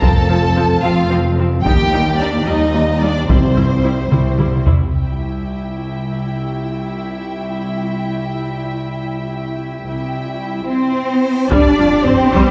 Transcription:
Already playing: F3 F4
0.00 F1 F2 F3 C4 A4 A5, taiko
0.29 F3 C4
0.56 F3 C4
0.83 F1 F2 F3 C4 F4 F5
1.10 F3 C4
1.39 F3 C4
1.63 D#2 G3 D#4 G4 G5, taiko
1.93 G3 D#4
2.19 G3 D4 D#4 D5
2.46 D#2 G3 D#4 D#5
2.74 G3 D#4
3.00 G3 D4 D#4 D5
3.28 C2 C3 G3 C4 E4 C5, taiko
3.57 G3 E4, taiko low-mid
3.83 G3 E4
4.11 C2 G3 E4, taiko mid
4.38 G3 E4, taiko mid
4.66 G3 E4, taiko low
4.93 C2 G3 E4 E5 G5
9.86 C2 G3 E4 E5 G5, reverse cymbal
10.68 C4 C5
11.50 F2 G3 D4 G4 D5, taiko, impact
11.79 F2 F4
12.05 F2 C4 C5, taiko low-mid
12.32 F2 G3, taiko

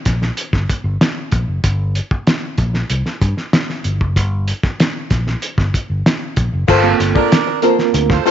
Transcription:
0.05 A#1, kick, snare, closed hi-hat
0.22 snare
0.37 closed hi-hat
0.53 G1, kick, snare
0.69 kick, closed hi-hat
0.84 G1
1.01 snare, closed hi-hat
1.31 A#1, kick, closed hi-hat
1.48 F#1
1.64 G1, kick, closed hi-hat
1.95 closed hi-hat
2.11 kick
2.27 snare, closed hi-hat
2.58 A#1, kick, closed hi-hat
2.74 snare
2.90 C2, closed hi-hat
3.06 snare
3.21 G2, kick, closed hi-hat
3.37 snare
3.53 snare, closed hi-hat
3.70 snare
3.84 G1, closed hi-hat
4.01 F#1, kick
4.16 G1, kick, closed hi-hat
4.48 closed hi-hat
4.63 kick, snare
4.80 snare, closed hi-hat
5.10 A#1, kick, snare, closed hi-hat
5.27 snare
5.42 closed hi-hat
5.58 G1, kick, snare
5.74 kick, closed hi-hat
5.90 G1
6.06 snare, closed hi-hat
6.36 A#1, kick, closed hi-hat
6.53 F#1
6.68 G1 A#3 F4 A4 C5, kick, crash
6.84 A#3 C4 F4 A4
7.00 G1, muted hollow-body jazz guitar stroke, closed hi-hat
7.15 A#3 D4 F4 A4 A#4 D5, kick
7.32 snare, closed hi-hat
7.47 muted hollow-body jazz guitar stroke
7.62 A#3 C4 F4 A4 A#4 C5, closed hi-hat
7.78 muted hollow-body jazz guitar stroke, snare
7.94 D2, muted hollow-body jazz guitar stroke, closed hi-hat
8.10 F4 A4 C5, muted hollow-body jazz guitar stroke, kick, snare
8.25 A#3 F4 A4 C5, open hi-hat

